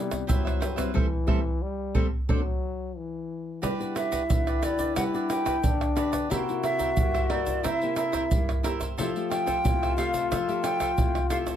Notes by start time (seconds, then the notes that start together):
Already playing: C3 G3 B3 E4
0.11 pandeiro, tamborim, shaker, surdo
0.27 G2 F#3 B3 E4 G4 B4 C5 E5, pandeiro, shaker, surdo
0.45 B4 C5 E5, pandeiro, tamborim, shaker
0.60 G4 B4 C5 E5, pandeiro, tamborim, shaker
0.76 G3 C4 E4 B4 C5 E5, pandeiro, tamborim, shaker, surdo
0.94 E3 G3 A3 C4 A4 C5 E5, surdo
1.27 G3 A3 C4 A4 C5 E5, surdo
1.62 G3
1.95 G3 A3 C4 A4 C5 E5, surdo
2.29 F#3 A3 C4 D4 A4 C5 D5, surdo
2.97 E3
3.62 G3 D4 E4 F#4 G4 B4 D5, pandeiro, shaker, surdo
3.79 D4 F#4 B4, pandeiro, shaker
3.95 F#4 G4 B4 D5 E5, pandeiro, tamborim, shaker
4.12 F#4 G4 B4 D5, pandeiro, shaker, surdo
4.29 D3 D4 F#4 B4, pandeiro, shaker, surdo
4.47 G4 B4 D5, pandeiro, tamborim, shaker
4.62 F#4 G4 B4 D5, pandeiro, tamborim, shaker, surdo
4.79 D4 F#4 G4 B4 D5, pandeiro, shaker, surdo
4.96 G3 F#4 G4 B4 D5 F#5, pandeiro, tamborim, shaker, surdo
5.14 D4 F#4 G4 B4 D5, pandeiro, shaker
5.29 F#4 G4 B4 D5 G5, pandeiro, tamborim, shaker
5.45 D4 F#4 G4 B4 D5, pandeiro, tamborim, shaker, surdo
5.63 D3 D4, pandeiro, shaker, surdo
5.81 pandeiro, tamborim, shaker
5.96 D4 F#4 G4 B4 D5, pandeiro, tamborim, shaker
6.12 G4 B4 D5, pandeiro, tamborim, shaker, surdo
6.30 C3 A#3 E4 F#4 G4 A#4 C5 E5, pandeiro, shaker, surdo
6.49 A#3 E4, pandeiro, shaker
6.63 E4 A#4 C5 E5, pandeiro, tamborim, shaker
6.78 E4 A#4 C5 E5, pandeiro, shaker, surdo
6.97 G2 A#3 E4 G4, pandeiro, shaker, surdo
7.14 A#4 C5 E5, pandeiro, tamborim, shaker
7.29 A#3 E4 A#4 C5 D5 E5, pandeiro, tamborim
7.45 A#4 C5 E5, pandeiro, shaker, surdo
7.63 C3 E4 A#4 C5 E5, pandeiro, tamborim, shaker, surdo
7.80 A#3 E4 G4 A#4 C5 E5, pandeiro, shaker
7.96 E4 A#4 C5 E5, pandeiro, tamborim, shaker
8.12 E4 A#4 C5 E5, pandeiro, tamborim, shaker, surdo
8.31 G2 A#3 E4 G4, pandeiro, shaker, surdo
8.49 pandeiro, tamborim, shaker
8.63 A#3 E4 G4 A#4 C5 E5, pandeiro, tamborim, shaker
8.80 A#4 C5 E5, pandeiro, tamborim, shaker, surdo
8.98 F3 A3 E4 F4 G4 A4 C5 E5, pandeiro, shaker, surdo
9.16 A3 G4, pandeiro, shaker
9.30 F4 A4 C5 E5 G5, pandeiro, tamborim, shaker
9.46 F4 A4 C5 E5, pandeiro, shaker, surdo
9.64 C3 A3 E4 G4, pandeiro, shaker, surdo
9.82 A4 C5 E5, pandeiro, tamborim, shaker
9.96 A3 F4 G4 A4 C5 E5 F5, pandeiro, tamborim, shaker
10.14 A4 C5 E5, pandeiro, shaker, surdo
10.31 F3 F4 A4 C5 E5, pandeiro, tamborim, shaker, surdo
10.48 A3 G4 A4 C5 E5, pandeiro, shaker
10.63 F4 A4 C5 E5 G5, pandeiro, tamborim, shaker
10.80 F4 A4 C5 E5, pandeiro, tamborim, shaker, surdo
10.98 C3 A3 E4 G4, pandeiro, shaker, surdo
11.15 pandeiro, tamborim, shaker
11.30 A3 E4 F4 G4 A4 C5 E5 F5, pandeiro, tamborim, shaker
11.47 A4 C5 E5, pandeiro, tamborim, shaker, surdo